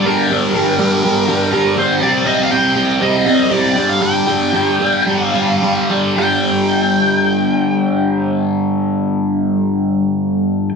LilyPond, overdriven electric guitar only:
\new Staff \with { instrumentName = "Overdriven electric guitar" } { \clef bass \time 4/4 \key g \minor \tempo 4 = 111 <g, d g>8 <g, d g>8 <g, d g>8 <g, d g>8 <g, d g>8 <g, d g>8 <g, d g>8 <g, d g>8 | <c g c'>8 <c g c'>8 <c g c'>8 <c g c'>8 <c g c'>8 <c g c'>8 <c g c'>8 <g, d g>8 | <g, d g>8 <g, d g>8 <g, d g>8 <g, d g>8 <g, d g>8 <g, d g>8 <g, d g>8 <g, d g>8 | <g, d g>1~ |
<g, d g>1 | }